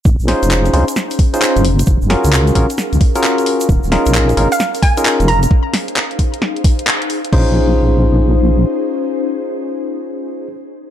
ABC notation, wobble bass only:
X:1
M:4/4
L:1/16
Q:"Swing 16ths" 1/4=132
K:Bbm
V:1 name="Wobble bass" clef=bass
B,,, B,,, z F,,,3 D,, z6 G,,,3 | G,,, G,,, z D,,3 B,,, z2 D,, z6 | E,,, E,,, z B,,,3 A,,, z6 F,,,3 | z16 |
B,,,12 z4 | z16 |]